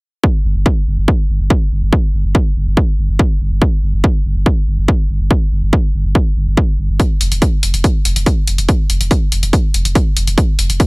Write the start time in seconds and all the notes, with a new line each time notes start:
0.24 kick
0.45 G1
0.56 G1
0.66 kick
0.87 G1
0.98 G1
1.08 kick
1.29 G1
1.40 G1
1.50 kick
1.71 G1
1.82 G1
1.93 kick
2.14 G1
2.25 G1
2.35 kick
2.56 G1
2.67 G1
2.77 kick
2.98 G1
3.09 G1
3.19 kick
3.40 G1
3.51 G1
3.62 kick
3.83 G1
3.94 G1
4.04 kick
4.25 G1
4.36 G1
4.46 kick
4.67 G1
4.78 G1
4.88 kick
5.09 G1
5.20 G1
5.31 kick
5.52 G1
5.63 G1
5.73 kick
5.94 G1
6.05 G1
6.15 kick
6.36 G1
6.47 G1
6.57 kick
6.78 G1
6.89 G1
7.00 kick, closed hi-hat
7.21 F1, closed hi-hat
7.32 F1, closed hi-hat
7.42 kick, closed hi-hat
7.63 F1, closed hi-hat
7.74 F1, closed hi-hat
7.84 kick, closed hi-hat
8.05 F1, closed hi-hat
8.16 F1, closed hi-hat
8.26 kick, closed hi-hat
8.47 F1, closed hi-hat
8.58 F1, closed hi-hat
8.69 kick, closed hi-hat
8.90 F1, closed hi-hat
9.01 F1, closed hi-hat
9.11 kick, closed hi-hat
9.32 F1, closed hi-hat
9.43 F1, closed hi-hat
9.53 kick, closed hi-hat
9.74 F1, closed hi-hat
9.85 F1, closed hi-hat
9.95 kick, closed hi-hat
10.16 F1, closed hi-hat
10.27 F1, closed hi-hat
10.38 kick, closed hi-hat
10.59 F1, closed hi-hat
10.70 F1, closed hi-hat
10.80 kick, closed hi-hat